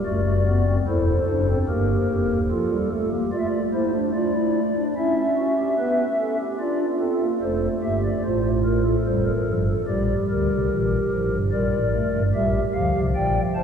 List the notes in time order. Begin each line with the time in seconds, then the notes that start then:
0.05 F#1 F#2 A3 F#4 D5
0.47 B3
0.67 C4
0.87 E1 E2 E4 A4 C5
1.28 F#1 F#2 D4
1.49 C4
1.68 G1 G2 A#3 G4 A#4
2.11 F1 F2
2.30 D#1 D#2
2.51 F3 F4 A4
2.71 G3
2.91 A3 A4
3.12 A#3 G4
3.32 A3 F4 D5
3.39 E5
3.46 D5
3.73 E4 C5
3.94 D4
4.14 F4 D5
4.35 E4
4.76 D4
4.96 C#4 E4 E5
5.37 F#4
5.58 G4
5.79 B3 B4
6.19 C#4 A4
6.40 G4
6.60 D4 F4 D5
7.00 C4 A4
7.21 A#3
7.42 F1 F2 A3 A4 C5
7.83 G1 G2 G4 E5
8.04 D5
8.24 A1 A2 F4 C5
8.65 A#4
8.85 A4
9.05 F1 F2 G3 A4 C5
9.26 A#4
9.47 G1 G2 F3
9.67 A4
9.87 A#1 A#2 G3 G4 D5
10.30 D2 D3 A#4
10.50 C2 C3
10.71 A#1 A#2 E3
11.11 A1 A2 F3
11.32 G1 G2
11.51 A#1 A#2 G3 A#4 D5
11.72 A1 A2
11.94 A3
12.12 G1 G2
12.34 A#1 A#2 G3 G4 E5
12.74 D2 D3 F3 F5
12.95 C2 C3
13.15 A#1 A#2 D5 G5
13.55 A1 A2 C5 A5